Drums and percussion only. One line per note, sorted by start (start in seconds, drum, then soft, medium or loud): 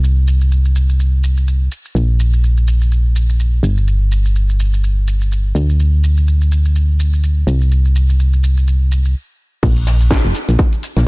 0.04 shaker soft
0.28 shaker medium
0.41 shaker soft
0.52 shaker soft
0.65 shaker soft
0.76 shaker medium
0.89 shaker soft
1.00 shaker soft
1.24 shaker medium
1.37 shaker soft
1.48 shaker soft
1.72 shaker medium
1.85 shaker soft
1.96 shaker soft
2.20 shaker medium
2.33 shaker soft
2.44 shaker soft
2.57 shaker soft
2.68 shaker medium
2.81 shaker soft
2.92 shaker soft
3.16 shaker medium
3.29 shaker soft
3.40 shaker soft
3.64 shaker medium
3.77 shaker soft
3.88 shaker soft
4.12 shaker medium
4.25 shaker soft
4.36 shaker soft
4.49 shaker soft
4.60 shaker medium
4.73 shaker soft
4.84 shaker soft
5.08 shaker medium
5.21 shaker soft
5.32 shaker soft
5.56 shaker medium
5.69 shaker soft
5.80 shaker soft
6.04 shaker medium
6.17 shaker soft
6.28 shaker soft
6.41 shaker soft
6.52 shaker medium
6.65 shaker soft
6.76 shaker soft
7.00 shaker medium
7.13 shaker soft
7.24 shaker soft
7.48 shaker medium
7.61 shaker soft
7.72 shaker soft
7.85 shaker soft
7.96 shaker medium
8.09 shaker soft
8.20 shaker soft
8.33 shaker soft
8.44 shaker medium
8.57 shaker soft
8.68 shaker soft
8.92 shaker medium
9.05 shaker soft
9.63 kick loud
9.63 closed hi-hat medium
9.63 crash loud
9.63 shaker soft
9.77 closed hi-hat soft
9.77 shaker soft
9.87 snare soft
9.87 closed hi-hat medium
9.87 open hi-hat loud
9.87 shaker medium
10.01 closed hi-hat soft
10.01 shaker soft
10.11 kick loud
10.11 snare loud
10.11 closed hi-hat medium
10.11 shaker soft
10.25 closed hi-hat soft
10.25 shaker soft
10.35 closed hi-hat medium
10.35 open hi-hat loud
10.35 shaker medium
10.49 closed hi-hat soft
10.49 shaker soft
10.59 kick loud
10.59 closed hi-hat medium
10.59 shaker soft
10.73 closed hi-hat soft
10.73 shaker soft
10.83 closed hi-hat medium
10.83 open hi-hat loud
10.83 shaker medium
10.97 snare soft
10.97 closed hi-hat soft
10.97 shaker soft